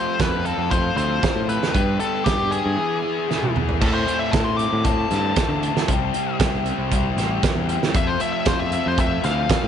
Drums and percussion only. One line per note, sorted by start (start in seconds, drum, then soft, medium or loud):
0.19 kick loud
0.19 snare loud
0.19 closed hi-hat medium
0.45 closed hi-hat medium
0.71 kick medium
0.71 closed hi-hat medium
0.97 closed hi-hat medium
1.23 kick loud
1.23 snare loud
1.23 closed hi-hat medium
1.49 closed hi-hat medium
1.63 snare medium
1.75 kick loud
1.75 closed hi-hat medium
2.00 closed hi-hat medium
2.26 kick loud
2.26 snare loud
2.26 closed hi-hat medium
2.52 closed hi-hat medium
3.31 snare medium
3.43 high tom medium
3.56 mid tom medium
3.69 floor tom medium
3.82 kick loud
3.82 crash loud
4.08 closed hi-hat medium
4.33 kick loud
4.33 snare loud
4.33 closed hi-hat medium
4.59 closed hi-hat medium
4.85 kick loud
4.85 closed hi-hat medium
5.11 snare soft
5.11 closed hi-hat medium
5.36 kick loud
5.36 snare loud
5.36 closed hi-hat loud
5.63 closed hi-hat medium
5.77 snare medium
5.88 kick loud
5.88 closed hi-hat medium
6.14 closed hi-hat medium
6.40 kick loud
6.40 snare loud
6.40 closed hi-hat loud
6.66 closed hi-hat medium
6.92 kick medium
6.92 closed hi-hat medium
7.18 snare soft
7.18 closed hi-hat medium
7.43 kick loud
7.43 snare loud
7.43 closed hi-hat medium
7.69 closed hi-hat medium
7.83 snare medium
7.94 kick loud
7.94 closed hi-hat medium
8.20 closed hi-hat medium
8.46 kick loud
8.46 snare loud
8.46 closed hi-hat medium
8.72 closed hi-hat medium
8.98 kick loud
8.98 closed hi-hat medium
9.24 snare soft
9.24 closed hi-hat medium
9.50 kick loud
9.50 snare loud
9.50 closed hi-hat medium